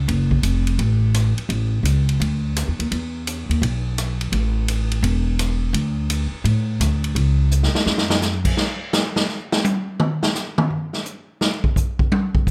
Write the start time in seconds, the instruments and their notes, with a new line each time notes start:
0.08 upright bass F#1, ride
0.31 kick
0.43 upright bass F1, hi-hat pedal, ride
0.67 ride
0.79 upright bass A1, ride
1.14 cross-stick, hi-hat pedal, ride
1.38 muted upright bass stroke, ride
1.49 upright bass A1, ride
1.83 upright bass C#2, hi-hat pedal, ride
2.09 ride
2.20 upright bass D2, ride
2.56 cross-stick, hi-hat pedal, ride
2.68 upright bass E2
2.79 upright bass D#2, ride
2.91 upright bass E2, ride
3.27 hi-hat pedal, ride
3.49 upright bass D#2, ride
3.62 upright bass B1, ride
3.98 cross-stick, hi-hat pedal, ride
4.21 ride
4.32 upright bass A1, ride
4.68 hi-hat pedal, ride
4.91 ride
5.02 upright bass E1, ride
5.39 cross-stick, hi-hat pedal, ride
5.73 upright bass D2, ride
6.10 hi-hat pedal, ride
6.32 muted upright bass stroke
6.44 upright bass A2, ride
6.80 upright bass D2, cross-stick, hi-hat pedal, ride
7.04 ride
7.15 upright bass C#2, ride
7.51 hi-hat pedal
7.63 snare
7.74 muted upright bass stroke, snare
7.86 upright bass F#2, snare
7.98 snare
8.10 snare
8.22 snare, hi-hat pedal
8.45 kick, crash
8.57 snare
8.93 snare, hi-hat pedal
9.16 snare
9.29 snare
9.52 snare
9.64 hi-hat pedal, high tom
10.00 mid tom
10.23 snare
10.35 snare, hi-hat pedal
10.58 mid tom
10.70 floor tom
10.93 snare
11.05 hi-hat pedal
11.41 snare
11.64 kick
11.76 kick, hi-hat pedal
11.99 kick
12.12 high tom
12.35 kick
12.47 kick, hi-hat pedal